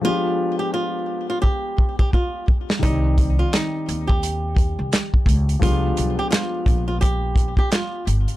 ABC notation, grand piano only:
X:1
M:4/4
L:1/8
Q:"Swing 16ths" 1/4=86
K:Gphr
V:1 name="Grand piano"
[F,A,=B,DG]8 | [E,G,CGd]8 | [F,A,=B,DG]8 |]